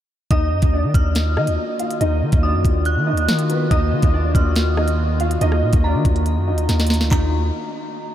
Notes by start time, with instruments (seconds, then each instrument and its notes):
0.31 808-style bass D#2, analog synth pad D#3 A#3 F4 F#4, grand piano D#4 D#5, synth bell D#6, kick, closed hi-hat
0.52 808-style bass F#2
0.62 808-style bass D#2, kick, closed hi-hat
0.73 grand piano D4 D5
0.84 808-style bass D#3
0.94 808-style bass D#2, synth bell F6, kick, closed hi-hat
1.15 snare, closed hi-hat
1.37 808-style bass D#3, grand piano D#4 D#5, cross-stick
1.47 808-style bass D#2, closed hi-hat
1.79 grand piano F4 F5, closed hi-hat
1.91 closed hi-hat
2.01 808-style bass D#2, grand piano D#4 D#5, closed hi-hat
2.22 808-style bass D#3
2.32 808-style bass D#2, kick, closed hi-hat
2.43 grand piano D4 D5, synth bell D#6
2.54 808-style bass F#2
2.65 808-style bass D#2, kick, closed hi-hat
2.85 synth bell F#6, closed hi-hat
2.97 808-style bass D#3
3.07 grand piano D#4 D#5
3.13 808-style bass D#2
3.17 closed hi-hat
3.28 808-style bass D#3, snare, closed hi-hat
3.39 closed hi-hat
3.50 grand piano B3 B4, closed hi-hat
3.71 808-style bass D#2, grand piano D#4 D#5, synth bell D#6, kick, closed hi-hat
3.92 808-style bass D#3
4.02 808-style bass D#2, kick, closed hi-hat
4.14 grand piano D4 D5
4.35 808-style bass D#2, synth bell F6, kick, closed hi-hat
4.56 snare, closed hi-hat
4.77 grand piano D#4 D#5, cross-stick
4.88 closed hi-hat
5.20 grand piano F4 F5, closed hi-hat
5.31 closed hi-hat
5.41 808-style bass D#2, grand piano D#4 D#5, closed hi-hat
5.52 cross-stick
5.62 808-style bass A#2
5.73 808-style bass D#2, kick, closed hi-hat
5.84 grand piano D4 D5, synth bell A#5
5.94 808-style bass D#3
6.05 808-style bass D#2, kick, closed hi-hat
6.16 closed hi-hat
6.26 closed hi-hat
6.37 808-style bass F#2
6.48 grand piano D#4 D#5
6.53 808-style bass D#2
6.58 closed hi-hat
6.69 808-style bass D#2, snare, closed hi-hat
6.80 snare, closed hi-hat
6.87 snare, closed hi-hat
6.94 closed hi-hat
7.01 808-style bass D2, snare
7.11 808-style bass D#2, grand piano D#4, synth bell A#5, kick, clap